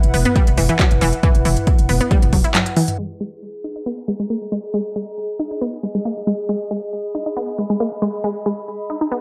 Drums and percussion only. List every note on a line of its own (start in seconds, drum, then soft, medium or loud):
0.03 closed hi-hat medium
0.14 open hi-hat medium
0.25 closed hi-hat medium
0.25 mid tom medium
0.36 kick loud
0.36 closed hi-hat medium
0.47 closed hi-hat medium
0.57 mid tom medium
0.57 open hi-hat loud
0.69 closed hi-hat medium
0.79 kick loud
0.79 clap loud
0.79 closed hi-hat medium
0.91 closed hi-hat medium
0.91 mid tom medium
1.01 open hi-hat medium
1.13 closed hi-hat medium
1.23 kick loud
1.23 closed hi-hat medium
1.23 mid tom medium
1.35 closed hi-hat medium
1.45 open hi-hat loud
1.57 closed hi-hat medium
1.57 mid tom medium
1.67 kick loud
1.67 closed hi-hat medium
1.79 closed hi-hat medium
1.89 mid tom medium
1.89 open hi-hat medium
2.00 closed hi-hat medium
2.11 kick loud
2.11 closed hi-hat medium
2.22 closed hi-hat medium
2.22 mid tom medium
2.33 kick medium
2.33 open hi-hat loud
2.44 closed hi-hat medium
2.55 clap loud
2.55 closed hi-hat medium
2.55 mid tom medium
2.66 closed hi-hat medium
2.77 open hi-hat medium
2.88 closed hi-hat medium
2.88 mid tom medium